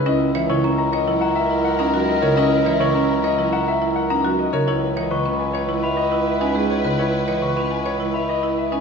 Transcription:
Already playing: C#3 B4
0.06 C#2 C#4 E4 A#4 D#5
0.35 E3 C#5 E5
0.50 C#3 E4 C#5 C#6
0.64 C#4 A#5
0.78 A#5
0.92 C#5 D#5
1.07 F#3 E4
1.21 F#5 A#5
1.35 E5
1.51 E4
1.65 F#5
1.79 C#4 D#4 A#5
1.94 F#3 F#4
2.08 D#5
2.22 C#3 A#4 C#5
2.37 C#4 E4 D#5
2.66 E3 C#5 E5
2.80 C#3 E4 C#5 C#6
2.95 C#4 A#5
3.10 A#5
3.24 C#5 D#5
3.38 F#3 E4
3.52 F#5 A#5
3.68 E5
3.82 E4
3.96 F#5
4.10 C#4 D#4 A#5
4.25 F#3 F#4
4.39 D#5
4.53 C#3 A#4 C#5
4.67 C#2 E4 B4 C#5
4.96 E3 C#5 D#5
5.11 C#3 B4 C#6
5.25 C#4 B5
5.39 G#5
5.53 C#5
5.69 G#3 E4
5.83 E5 B5
5.97 D#5
6.12 E4
6.26 E5
6.41 C#4 D#4 G#5
6.55 G#3 G#4
6.70 C#5
6.84 C#3 B4
6.99 E4 C#5
7.28 E3 C#5 D#5
7.42 C#3 B4 C#6
7.57 C#4 B5
7.71 G#5
7.86 C#5
8.00 G#3 E4
8.14 E5 B5
8.29 D#5
8.43 E4
8.58 E5
8.72 C#4 D#4 G#5

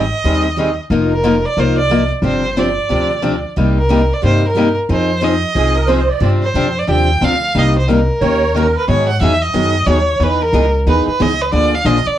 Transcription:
Already playing: G#1 D#5
0.24 D#2 D#3 G3 C4 D#4 G#4
0.56 D#3 G3 C4 D#4 G#4
0.90 F1 F3 A#3 D#4 F4 A#4
1.11 A#4
1.23 F3 A#3 D#4 F4 A#4
1.46 D5
1.57 C2 F3 A#3 D#4 F4 A#4 C5
1.78 D5
1.90 F3 A#3 D#4 F4 A#4
2.22 G1 C3 F3 C4 D4 G4 C5
2.57 C3 F3 C4 D4 G4 D5
2.90 D2 C3 F3 C4 D4 G4
3.22 C3 F3 C4 D4 G4
3.56 C2 C3 G3 A#3 D#4 G4
3.79 A#4
3.89 C3 G3 A#3 D#4 G4
4.13 D5
4.22 G2 C3 G3 A#3 D#4 G4 C5
4.49 A#4
4.55 C3 G3 A#3 D#4 G4
4.89 F2 F3 C4 D#4 G#4 C5
5.21 F3 C4 D#4 G#4 D#5
5.54 C2 F3 C4 D#4 G#4
5.75 A#4
5.87 F3 C4 D#4 G#4 C5
6.09 D5
6.20 G2 C3 F3 C4 D4 G4
6.43 C5
6.54 F2 C3 F3 C4 D4 G4
6.79 D5
6.87 D#2 C3 F3 C4 D4 G4 G5
7.21 D2 C3 F3 C4 D4 G4 F5
7.55 C2 C3 G3 A#3 D#4 G4 D#5
7.79 C5
7.89 C3 G3 A#3 D#4 G4 A#4
8.21 D#2 D#3 A#3 C#4 G4 A#4 C#5
8.54 D#3 A#3 C#4 G4 A#4
8.77 B4
8.88 G#2 D#3 F#3 B3 D#4 G#4 C#5
9.08 F#5
9.20 E2 D#3 F#3 B3 D#4 G#4 E5
9.42 D#5
9.54 F#2 D#3 F#3 B3 D#4 G#4
9.87 D#2 D#3 F#3 B3 D#4 G#4 C#5
10.20 E2 E3 G#3 B3 D#4 G#4 B4
10.42 A#4
10.53 C#2 E3 G#3 B3 D#4 G#4
10.86 D#2 E3 G#3 B3 D#4 G#4 B4
11.07 B4, muted upright bass stroke
11.20 C#2 E3 G#3 B3 D#4 G#4 D#5
11.41 B4
11.52 D2 D3 F3 A#3 D4 G#4 D5
11.75 F5
11.85 A#1 D3 F3 A#3 D4 G#4 D#5
12.06 D5, muted upright bass stroke

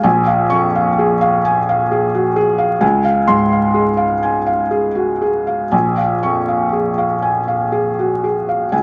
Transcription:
0.03 A#1 G#5
0.27 F5
0.50 F2 C#6
0.75 F5
0.99 G#4
1.21 F5
1.45 G#5
1.69 F5
1.92 G#4
2.14 F#4
2.36 G#4
2.58 F5
2.81 C#2 G#5
3.05 F5
3.28 G#2 C6
3.52 F5
3.74 G#4
3.97 F5
4.23 G#5
4.46 F5
4.71 G#4
4.95 F#4
5.22 G#4
5.47 F5
5.71 A#1 G#5
5.97 F5
6.23 F2 C#6
6.48 F5
6.73 G#4
6.98 F5
7.22 G#5
7.48 F5
7.72 G#4
7.99 F#4
8.24 G#4
8.49 F5
8.72 C#2 G#5

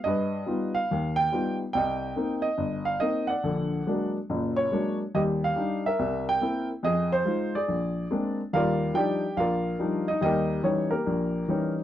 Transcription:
0.04 G2 B4 D#5
0.46 G3 B3 D#4 F4
0.75 F5
0.91 D#2
1.16 G5
1.32 G3 B3 D#4 F4
1.73 C2 D#5 G5
2.16 A#3 C4 D#4
2.42 D#5
2.58 G1
2.85 F5
3.00 A#3 C4 D#4 D#5
3.27 D5 F#5
3.44 A#1 D3
3.87 F#3 G#3 A#3 D4
4.30 F#1 A#2
4.56 C#5
4.72 F#3 G#3 A#3 D4
5.15 D#2 G3 G4 D#5
5.44 F5
5.56 G3 D4 D#4
5.86 A#4 E5
5.99 C2
6.29 G5
6.41 A#3 C4 E4
6.83 F2 G#4 D#5
7.12 C5
7.25 G#3 D#4 F4
7.55 G#4 D5
7.68 A#1
8.11 G#3 A#3 C4 D4
8.53 D#2 G3 F4 A#4 D5 F5
8.94 F3 G3 D4 D#4 G4 D5 G5
9.37 A#1 F4 A#4 D5 F5
9.79 F3 G3 D4 D#4
10.08 D#4 D#5
10.21 D#2 G3 D#4 A#4 D#5
10.25 G4
10.63 E3 G3 C#4 D#4 C#5
10.91 A#3 G4 A#4
11.07 A#1
11.48 E3 G3 C#4 D#4

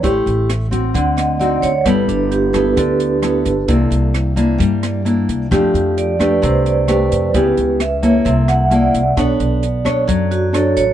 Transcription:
0.03 A1 A3 E4 G4 C5, kick, closed hi-hat
0.26 A1, closed hi-hat
0.50 cross-stick, closed hi-hat
0.71 C4 F#4, kick, closed hi-hat
0.94 D2 D3 F#5, kick, closed hi-hat
1.17 D#5, cross-stick, closed hi-hat
1.40 C4 D#4 F#4 D5, closed hi-hat
1.62 D2 C#5, kick, closed hi-hat
1.85 G1 G3 B3 E4 A4 B4, kick, cross-stick, closed hi-hat
2.08 G1 D4, closed hi-hat
2.31 G4, closed hi-hat
2.53 B3 E4 A4 B4, kick, cross-stick, closed hi-hat
2.77 D2 D3 A4, kick, closed hi-hat
3.00 closed hi-hat
3.22 B3 E4 A4, cross-stick, closed hi-hat
3.45 G1, kick, closed hi-hat
3.68 C2 C3 A#3 D4 E4, kick, closed hi-hat
3.91 C2, closed hi-hat
4.14 cross-stick, closed hi-hat
4.36 A#3 D4 E4, kick, closed hi-hat
4.58 G2 G3, kick, closed hi-hat
4.83 cross-stick, closed hi-hat
5.05 A#3 D4 E4, closed hi-hat
5.29 C2, kick, closed hi-hat
5.51 F2 F3 A3 D4 G4, kick, cross-stick, closed hi-hat
5.74 F2, closed hi-hat
5.98 D5, closed hi-hat
6.19 A3 D4 G4 B4, kick, cross-stick, closed hi-hat
6.42 C2 C3 C5, kick, closed hi-hat
6.66 D5, closed hi-hat
6.88 A3 D4 G4 B4, cross-stick, closed hi-hat
7.11 F2, kick, closed hi-hat
7.34 C#2 C#3 B3 E4 G4, kick, closed hi-hat
7.57 C#2, closed hi-hat
7.80 E5, cross-stick, closed hi-hat
8.03 A#3 E4 A4 C#5, kick, closed hi-hat
8.25 C2 C3 E5, kick, closed hi-hat
8.48 F#5, cross-stick, closed hi-hat
8.71 A#3 E4 A4 D5, closed hi-hat
8.94 C2, kick, closed hi-hat
9.17 B1 B3 D4 A4 C#5, kick, cross-stick, closed hi-hat
9.40 B1, closed hi-hat
9.63 closed hi-hat
9.85 D4 A4 C#5, kick, cross-stick, closed hi-hat
10.08 F#2 F#3, kick, closed hi-hat
10.31 F#4, closed hi-hat
10.53 D4 A4 C#5, cross-stick, closed hi-hat
10.77 A1 C#5, kick, closed hi-hat

